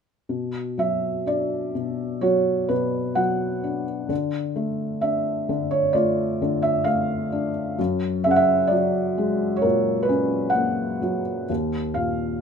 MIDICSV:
0, 0, Header, 1, 2, 480
1, 0, Start_track
1, 0, Tempo, 960000
1, 146, Time_signature, 4, 2, 24, 8
1, 1586, Tempo, 923077
1, 4946, Tempo, 937500
1, 6368, End_track
2, 0, Start_track
2, 0, Title_t, "Felt piano"
2, 0, Program_c, 0, 0
2, 145, Note_on_c, 0, 47, 36
2, 249, Control_c, 0, 64, 127
2, 389, Note_on_c, 0, 54, 29
2, 395, Note_on_c, 0, 76, 55
2, 618, Note_off_c, 0, 76, 0
2, 631, Note_on_c, 0, 62, 34
2, 637, Note_on_c, 0, 74, 55
2, 867, Note_off_c, 0, 47, 0
2, 874, Note_on_c, 0, 47, 36
2, 1101, Note_off_c, 0, 54, 0
2, 1106, Note_on_c, 0, 73, 56
2, 1109, Note_on_c, 0, 54, 36
2, 1113, Note_on_c, 0, 66, 41
2, 1129, Note_off_c, 0, 74, 0
2, 1337, Note_off_c, 0, 47, 0
2, 1343, Note_on_c, 0, 71, 52
2, 1345, Note_on_c, 0, 47, 40
2, 1353, Note_off_c, 0, 73, 0
2, 1565, Note_off_c, 0, 62, 0
2, 1570, Note_off_c, 0, 54, 0
2, 1576, Note_on_c, 0, 78, 59
2, 1578, Note_on_c, 0, 54, 36
2, 1590, Note_off_c, 0, 71, 0
2, 1827, Note_on_c, 0, 62, 36
2, 1926, Note_off_c, 0, 78, 0
2, 2048, Note_off_c, 0, 47, 0
2, 2051, Note_off_c, 0, 66, 0
2, 2052, Note_off_c, 0, 54, 0
2, 2062, Note_off_c, 0, 62, 0
2, 2063, Note_on_c, 0, 50, 43
2, 2078, Control_c, 0, 64, 0
2, 2167, Control_c, 0, 64, 127
2, 2306, Note_on_c, 0, 57, 33
2, 2543, Note_on_c, 0, 76, 59
2, 2549, Note_on_c, 0, 62, 37
2, 2784, Note_off_c, 0, 50, 0
2, 2792, Note_on_c, 0, 50, 44
2, 2890, Note_off_c, 0, 76, 0
2, 2905, Note_on_c, 0, 73, 61
2, 3020, Note_on_c, 0, 74, 60
2, 3021, Note_off_c, 0, 57, 0
2, 3022, Note_off_c, 0, 73, 0
2, 3029, Note_on_c, 0, 57, 40
2, 3030, Note_on_c, 0, 65, 46
2, 3266, Note_off_c, 0, 50, 0
2, 3274, Note_on_c, 0, 50, 42
2, 3365, Note_off_c, 0, 74, 0
2, 3381, Note_on_c, 0, 76, 68
2, 3489, Note_off_c, 0, 62, 0
2, 3495, Note_off_c, 0, 57, 0
2, 3495, Note_on_c, 0, 77, 70
2, 3503, Note_on_c, 0, 57, 39
2, 3509, Note_off_c, 0, 76, 0
2, 3744, Note_on_c, 0, 62, 43
2, 3839, Note_off_c, 0, 77, 0
2, 3965, Note_off_c, 0, 65, 0
2, 3967, Note_off_c, 0, 50, 0
2, 3970, Note_off_c, 0, 57, 0
2, 3979, Note_off_c, 0, 62, 0
2, 3985, Note_on_c, 0, 42, 50
2, 3994, Control_c, 0, 64, 0
2, 4084, Control_c, 0, 64, 127
2, 4221, Note_on_c, 0, 76, 72
2, 4229, Note_on_c, 0, 49, 41
2, 4257, Note_on_c, 0, 78, 57
2, 4262, Note_off_c, 0, 76, 0
2, 4285, Note_on_c, 0, 76, 68
2, 4296, Note_off_c, 0, 78, 0
2, 4447, Note_on_c, 0, 74, 70
2, 4465, Note_off_c, 0, 76, 0
2, 4468, Note_on_c, 0, 54, 42
2, 4709, Note_on_c, 0, 56, 41
2, 4910, Note_on_c, 0, 73, 66
2, 4937, Note_on_c, 0, 70, 47
2, 4945, Note_on_c, 0, 46, 40
2, 4947, Note_off_c, 0, 74, 0
2, 5147, Note_on_c, 0, 71, 59
2, 5159, Note_off_c, 0, 49, 0
2, 5171, Note_off_c, 0, 73, 0
2, 5179, Note_on_c, 0, 61, 42
2, 5383, Note_off_c, 0, 71, 0
2, 5388, Note_on_c, 0, 78, 66
2, 5397, Note_off_c, 0, 54, 0
2, 5415, Note_on_c, 0, 58, 37
2, 5639, Note_off_c, 0, 56, 0
2, 5656, Note_on_c, 0, 54, 40
2, 5743, Note_off_c, 0, 78, 0
2, 5876, Note_off_c, 0, 70, 0
2, 5877, Note_off_c, 0, 42, 0
2, 5879, Note_off_c, 0, 61, 0
2, 5880, Note_off_c, 0, 46, 0
2, 5883, Note_off_c, 0, 58, 0
2, 5891, Note_off_c, 0, 54, 0
2, 5898, Note_on_c, 0, 39, 45
2, 5905, Control_c, 0, 64, 0
2, 6007, Control_c, 0, 64, 127
2, 6128, Note_on_c, 0, 77, 58
2, 6137, Note_on_c, 0, 46, 34
2, 6368, Note_off_c, 0, 39, 0
2, 6368, Note_off_c, 0, 46, 0
2, 6368, Note_off_c, 0, 77, 0
2, 6368, End_track
0, 0, End_of_file